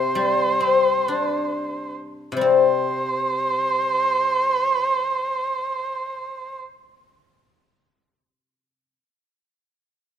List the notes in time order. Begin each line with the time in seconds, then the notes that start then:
Already playing: C3 C5
0.15 G3
0.61 C4
1.08 D4
2.32 C3
2.37 G3
2.41 C4 C5